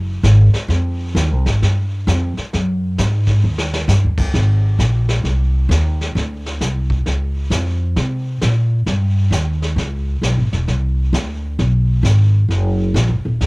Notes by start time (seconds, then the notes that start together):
Already playing: F#1
0.23 G#1, snare, hi-hat pedal
0.53 muted upright bass stroke, snare
0.68 F2, brush sweep, snare
1.15 D#2, snare, hi-hat pedal
1.31 C2
1.45 G#1, snare
1.62 G2, brush sweep, snare
2.07 F2, snare, hi-hat pedal
2.37 muted upright bass stroke, snare
2.53 F#2, brush sweep, snare
2.98 G#2, snare, hi-hat pedal
3.27 kick, snare
3.44 D#2
3.58 snare
3.73 snare
3.88 G2, snare, hi-hat pedal
4.04 D#2
4.18 C#2, kick, crash
4.34 G#1, brush sweep, snare
4.79 A#1, snare, hi-hat pedal
5.09 snare
5.24 C2, brush sweep, snare
5.69 D#2, snare, hi-hat pedal
6.01 snare
6.15 D2, brush sweep, snare
6.46 snare
6.61 C2, snare, hi-hat pedal
6.90 kick
7.06 C#2, brush sweep, snare
7.50 F2, snare, hi-hat pedal
7.96 C3, brush sweep, snare
8.41 A#2, snare, hi-hat pedal
8.86 G2, brush sweep, snare
9.31 D#2, snare, hi-hat pedal
9.62 snare
9.76 C#2, brush sweep, snare
10.22 B1, snare, hi-hat pedal
10.37 G#1
10.53 E1, snare
10.68 C2, brush sweep, snare
11.13 D2, snare, hi-hat pedal
11.59 B1, brush sweep, snare
12.03 G#1, snare, hi-hat pedal
12.48 F#1, brush sweep, snare
12.94 A#1, snare, hi-hat pedal
13.09 F#1
13.25 D#1
13.41 D#2, brush sweep, snare